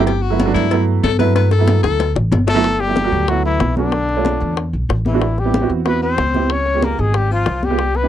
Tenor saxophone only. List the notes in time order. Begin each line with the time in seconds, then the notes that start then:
0.06 G4
0.22 F#4
0.54 E4
1.03 A4
1.19 B4
1.35 B4
1.52 A4
1.83 A4
2.47 A3
2.80 G3
3.29 F#3
3.45 E3
3.77 D3
5.07 E3
5.38 G3
5.86 B3
6.02 C4
6.51 C#4
6.83 A#3
6.99 G#3
7.14 G3
7.31 F3
7.63 G3
7.95 B3